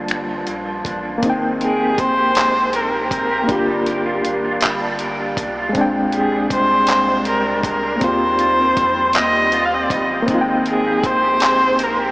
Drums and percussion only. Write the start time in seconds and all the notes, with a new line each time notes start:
0.08 finger snap, closed hi-hat
0.47 closed hi-hat
0.85 kick, closed hi-hat
1.23 kick, closed hi-hat
1.61 closed hi-hat
1.98 kick, closed hi-hat
2.35 clap, closed hi-hat
2.73 closed hi-hat
3.11 kick, closed hi-hat
3.49 kick, closed hi-hat
3.86 closed hi-hat
4.25 closed hi-hat
4.61 clap, closed hi-hat
4.99 closed hi-hat
5.37 kick, closed hi-hat
5.75 kick, closed hi-hat
6.12 closed hi-hat
6.50 kick, closed hi-hat
6.87 clap, closed hi-hat
7.25 closed hi-hat
7.63 kick, closed hi-hat
8.01 kick, closed hi-hat
8.39 closed hi-hat
8.77 kick, closed hi-hat
9.13 clap, closed hi-hat
9.52 closed hi-hat
9.90 kick, closed hi-hat
10.28 kick, closed hi-hat
10.66 closed hi-hat
11.04 kick, closed hi-hat
11.40 clap, closed hi-hat
11.79 closed hi-hat